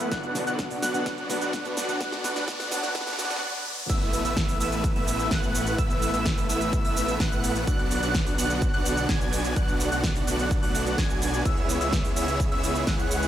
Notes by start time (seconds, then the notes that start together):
Already playing: B3, riser
0.00 cabasa
0.12 B1 D3 F#3 B3 D4 F#4 F#5 F#6, kick, snare, closed hi-hat, cabasa
0.23 closed hi-hat
0.35 B2 B3 D4 F#4 B4, snare, open hi-hat, cabasa
0.47 B1 B3 D4 F#4 D5 F#5 F#6, closed hi-hat, cabasa
0.59 kick, snare, closed hi-hat, cabasa
0.70 B2 B3 D4 F#4 B4, open hi-hat, cabasa
0.82 B1 B3 D4 F#4 D5 F#5 F#6, snare, open hi-hat, cabasa
0.94 B2 B3 D4 F#4 B4, closed hi-hat, cabasa
1.06 B1 B3 D4 F#4 D5 F#5 F#6, kick, snare, closed hi-hat, cabasa
1.18 closed hi-hat
1.29 B2 B3 D4 F#4 B4, snare, open hi-hat, cabasa
1.41 B1 B3 D4 F#4 D5 F#5 F#6, closed hi-hat, cabasa
1.53 kick, snare, closed hi-hat, cabasa
1.65 B2 B3 D4 F#4 B4, closed hi-hat, cabasa
1.77 B1 B3 D4 F#4 D5 F#5 F#6, snare, open hi-hat, cabasa
1.88 B2 B3 D4 F#4 B4, closed hi-hat, cabasa
2.00 B1 B3 D4 F#4 D5 F#5 F#6, kick, snare, closed hi-hat, cabasa
2.12 snare, closed hi-hat, cabasa
2.24 B2 B3 D4 F#4 B4, snare, open hi-hat, cabasa
2.36 B1 B3 D4 F#4 D5 F#5 F#6, snare, closed hi-hat, cabasa
2.48 B1 B3 D4 F#4 D5 F#5 F#6, kick, snare, closed hi-hat, cabasa
2.60 snare, open hi-hat, cabasa
2.71 B2 B3 D4 F#4 B4, snare, open hi-hat, cabasa
2.83 B1 B3 D4 F#4 D5 F#5 F#6, snare, closed hi-hat, cabasa
2.95 B1 B2 B3 D4 F#4 B4 F#5 F#6, kick, snare, closed hi-hat, cabasa
3.01 snare
3.07 snare, open hi-hat, cabasa
3.13 snare
3.18 B1 B2 B3 D4 F#4 B4 D5 F#5 F#6, snare, open hi-hat, cabasa
3.25 snare
3.30 snare, closed hi-hat, cabasa
3.36 snare
3.90 A1 E3 A3 B3 E4 B4 E5 E6, kick, closed hi-hat, crash, impact, cabasa
4.01 closed hi-hat
4.13 open hi-hat, cabasa
4.25 A1 A3 B3 E4 B4 E5 E6, closed hi-hat, cabasa
4.37 kick, snare, closed hi-hat, cabasa
4.49 open hi-hat, cabasa
4.60 A1 A3 B3 E4 B4 E5 E6, open hi-hat, cabasa
4.72 closed hi-hat, cabasa
4.84 kick, closed hi-hat, cabasa
4.96 A1 A3 B3 E4 B4 E5 E6, closed hi-hat
5.08 open hi-hat, cabasa
5.19 closed hi-hat, cabasa
5.31 A1 A3 B3 E4 B4 F#5 F#6, kick, snare, closed hi-hat, cabasa
5.43 closed hi-hat, cabasa
5.55 open hi-hat, cabasa
5.67 closed hi-hat, cabasa
5.78 A1 A3 B3 B4 E5 E6, kick, closed hi-hat, cabasa
5.90 closed hi-hat, cabasa
6.02 open hi-hat, cabasa
6.14 A1 A3 B3 E4 B4 E5 E6, closed hi-hat, cabasa
6.25 kick, snare, closed hi-hat, cabasa
6.38 open hi-hat, cabasa
6.49 A1 A3 B3 E4 B4 E5 E6, open hi-hat, cabasa
6.61 closed hi-hat, cabasa
6.73 kick, closed hi-hat, cabasa
6.85 A1 A3 B3 E4 B4 E5 E6, open hi-hat
6.97 open hi-hat, cabasa
7.08 closed hi-hat, cabasa
7.20 A1 A3 B3 E4 F#5 F#6, kick, snare, closed hi-hat, cabasa
7.32 closed hi-hat, cabasa
7.44 open hi-hat, cabasa
7.56 closed hi-hat, cabasa
7.67 B1 D3 F#3 B3 D4 F#4 D5 F#5 F#6, kick, closed hi-hat, cabasa
7.79 closed hi-hat
7.91 open hi-hat, cabasa
8.03 B1 B3 D4 F#4 D5 F#5 F#6, closed hi-hat, cabasa
8.14 kick, snare, closed hi-hat, cabasa
8.27 open hi-hat, cabasa
8.38 B1 B3 D4 F#4 D5 F#5 F#6, open hi-hat, cabasa
8.50 closed hi-hat, cabasa
8.62 kick, closed hi-hat, cabasa
8.74 B1 B3 D4 F#4 D5 F#5 F#6, closed hi-hat
8.85 open hi-hat, cabasa
8.97 closed hi-hat, cabasa
9.09 B1 B3 D4 F#4 G#6, kick, snare, closed hi-hat, cabasa
9.21 closed hi-hat, cabasa
9.33 open hi-hat, cabasa
9.45 closed hi-hat, cabasa
9.56 B1 A3 B3 D4 F#4 D5 F#5 F#6, kick, closed hi-hat, cabasa
9.68 closed hi-hat, cabasa
9.80 open hi-hat, cabasa
9.92 B1 B3 D4 F#4 D5 F#5 F#6, closed hi-hat, cabasa
10.04 kick, snare, closed hi-hat, cabasa
10.16 open hi-hat, cabasa
10.27 B1 B3 D4 F#4 D5 F#5 F#6, open hi-hat, cabasa
10.39 closed hi-hat, cabasa
10.51 kick, closed hi-hat, cabasa
10.63 B1 B3 D4 F#4 D5 F#5 F#6, open hi-hat
10.75 open hi-hat, cabasa
10.87 closed hi-hat, cabasa
10.98 B1 B3 D4 F#4 G#5 G#6, kick, snare, closed hi-hat, cabasa
11.10 closed hi-hat, cabasa
11.22 open hi-hat, cabasa
11.34 closed hi-hat, cabasa
11.45 C#2 C#3 G#3 B3 E4 G#4 E5 E6, kick, closed hi-hat, cabasa
11.57 closed hi-hat
11.69 open hi-hat, cabasa
11.81 C#2 B3 E4 G#4 C#5 E5 E6, closed hi-hat, cabasa
11.93 kick, snare, closed hi-hat, cabasa
12.05 open hi-hat, cabasa
12.16 C#2 B3 E4 G#4 C#5 E5 E6, open hi-hat, cabasa
12.28 closed hi-hat, cabasa
12.40 kick, closed hi-hat, cabasa
12.52 C#2 B3 E4 G#4 C#5 E5 E6, closed hi-hat
12.64 open hi-hat, cabasa
12.75 closed hi-hat, cabasa
12.87 C#2 B3 E4 G#4 F#5 F#6, kick, snare, closed hi-hat, cabasa
12.99 closed hi-hat, cabasa
13.11 open hi-hat, cabasa
13.23 closed hi-hat, cabasa